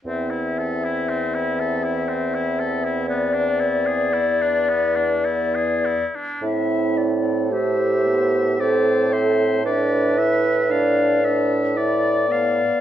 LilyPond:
<<
  \new Staff \with { instrumentName = "Flute" } { \time 3/4 \key a \minor \tempo 4 = 56 e''2. | d''2~ d''8 r8 | e''8 d''8 c''4 c''8 e''8 | e''4 d''4 d''4 | }
  \new Staff \with { instrumentName = "Clarinet" } { \time 3/4 \key a \minor e'2.~ | e'2~ e'8 r8 | e'4 g'4 a'4 | b'2~ b'8 r8 | }
  \new Staff \with { instrumentName = "Oboe" } { \time 3/4 \key a \minor c'16 e'16 a'16 e'16 c'16 e'16 a'16 e'16 c'16 e'16 a'16 e'16 | b16 d'16 e'16 gis'16 e'16 d'16 b16 d'16 e'16 gis'16 e'16 d'16 | r4 e''4 d''8 c''8 | d''8 e''8 f''8 e''8 d''8 f''8 | }
  \new Staff \with { instrumentName = "French horn" } { \time 3/4 \key a \minor c'2.~ | c'4 b4. r8 | c'4 a8 b8 c'4 | d'8 e'8 d'8 d'8 e'8 b8 | }
  \new Staff \with { instrumentName = "Bassoon" } { \clef bass \time 3/4 \key a \minor e,2.~ | e,2~ e,8 r8 | a,2.~ | a,2. | }
>>